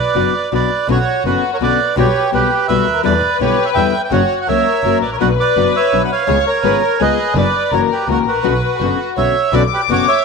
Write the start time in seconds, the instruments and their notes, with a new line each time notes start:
Already playing: bandoneon B4 D5
0.15 double bass F#1, nylon-string guitar B2 F#3 B3 D4 F#4
0.52 double bass B1, nylon-string guitar B2 F#3 B3 D4 F#4, bandoneon B4 D5
0.87 double bass B1, nylon-string guitar B2 D3 B3 C#4 F#4, violin section F#4, bandoneon F#4 C#5
1.25 double bass F#1, nylon-string guitar B2 D3 B3 C#4 F#4, bandoneon F#4 B4
1.54 bandoneon A#4 C#5
1.60 double bass B1, nylon-string guitar B2 D3 B3 C#4 F#4, bandoneon B4 D5
1.96 double bass B1, nylon-string guitar B2 D3 G3 B3 F#4, bandoneon G4 C#5, violin section B4
2.32 double bass B1, nylon-string guitar B2 D3 G3 B3 F#4, violin section G4, bandoneon G4 B4
2.68 double bass B1, nylon-string guitar B2 D3 G3 B3 F#4, violin section F#4, bandoneon B4 E5
2.87 double bass D2, violin section A#4
3.03 double bass E2, nylon-string guitar B2 D3 G3 B3 E4, violin section B4, bandoneon B4 D5
3.39 double bass B1, nylon-string guitar B2 D3 G3 B3 E4, bandoneon G4 C#5
3.65 bandoneon C#5 E5
3.74 double bass E2, nylon-string guitar B2 D3 G3 B3 E4, bandoneon E5 G5
4.04 bandoneon G5
4.11 double bass F#1, nylon-string guitar C#3 F#3 A#3 C#4 F#4, violin section F#4, bandoneon C#5 F#5
4.41 bandoneon F#5
4.48 double bass C#2, nylon-string guitar C#3 F#3 A#3 C#4 F#4, violin section A#4, bandoneon C#5 E5
4.83 double bass F#1, nylon-string guitar C#3 F#3 A#3 C#4 F#4, violin section A#4
5.01 double bass A1, bandoneon B4 D5
5.12 bandoneon A#4 C#5
5.20 double bass B1, nylon-string guitar B2 F#3 B3 D4 F#4, bandoneon F#4 B4, violin section B4
5.40 bandoneon B4 D5
5.56 double bass F#1, nylon-string guitar B2 F#3 B3 D4 F#4
5.76 bandoneon C#5 E5
5.92 double bass B1, nylon-string guitar B2 F#3 B3 D4 F#4
6.04 bandoneon F#5
6.12 bandoneon C#5 F5
6.27 double bass C#2, nylon-string guitar C#3 G#3 B3 F4 G#4, violin section C#5
6.47 bandoneon A#4 C#5
6.63 double bass G#1, nylon-string guitar C#3 G#3 B3 F4 G#4, violin section B4
6.81 violin section A#4
7.00 double bass C#2, nylon-string guitar C#3 G#3 B3 F4 G#4, violin section G#4, bandoneon B4 D#5
7.35 double bass F#1, nylon-string guitar B2 F#3 B3 D4 F#4, violin section B4, bandoneon B4 D5
7.72 double bass F#1, nylon-string guitar C#3 E3 A#3 C#4 F#4, violin section A#4, bandoneon A#4 C#5
7.92 bandoneon G4 B4
8.07 double bass C#2, nylon-string guitar C#3 E3 A#3 C#4 F#4, violin section A#4
8.11 bandoneon F#4 A#4
8.25 double bass A1, bandoneon F#4 B4
8.43 double bass B1, nylon-string guitar B2 D3 B3 C#4 F#4, violin section B4
8.79 double bass F#1, nylon-string guitar B2 D3 B3 C#4 F#4, violin section F#4
9.17 double bass B1, nylon-string guitar B2 D3 B3 C#4 F#4, bandoneon C#5 E5
9.52 double bass B1, nylon-string guitar B2 D3 B3 C#4 F#4, bandoneon B4 D5, violin section D6
9.73 bandoneon G4 B4
9.88 double bass F#1, nylon-string guitar B2 D3 B3 C#4 F#4, bandoneon F#4 C#5
10.08 bandoneon C#5 E5